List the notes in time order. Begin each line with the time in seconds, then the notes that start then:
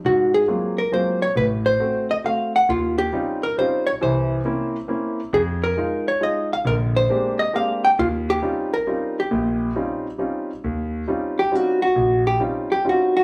0.05 G#2 F#4
0.34 G#4
0.48 F#3 G#3 A#3 C4 F4
0.78 A#4
0.92 F#3 G#3 A#3 C4 F4 C5
1.22 C#5
1.36 A1 A2 B4
1.66 C5
1.80 A3 C4 F#4
2.11 D#5
2.24 A3 C4 F#4 F5
2.56 F#5
2.69 D#2 F4
2.98 G4
3.13 G3 C4 C#4 D#4 F4
3.43 A#4
3.58 G3 C4 C#4 D#4 F4 C5
3.87 C#5
4.01 C2 E3 C5
4.45 A#3 C4 C#4 E4
4.88 A#3 C4 C#4 E4
5.33 F2 G#4
5.64 A#4
5.77 G#3 D#4 F4
6.08 C#5
6.21 G#3 D#4 F4 D#5
6.53 F5
6.65 A#1 D3 A#4
6.96 C5
7.10 G#3 A#3 C4 D4 G4
7.39 D#5
7.53 G#3 A#3 C4 D4 G4 F5
7.85 G5
7.99 D#2 F4
8.30 G4
8.42 G3 C4 C#4 D#4 F4
8.74 A#4
8.87 G3 C4 C#4 D#4 F4
9.20 G4
9.31 A#1 A#2
9.76 G3 C4 C#4 D#4 F4
10.18 G3 C4 C#4 D#4 F4
10.64 D#2
11.08 G3 C4 C#4 D#4 F4
11.39 G4
11.52 G3 C4 C#4 D#4 F4 F#4
11.82 F#4
11.96 A#1
12.27 G4
12.40 G3 C4 C#4 D#4 F4
12.72 G4
12.84 G3 C4 C#4 D#4 F4
12.89 F#4
13.17 F#4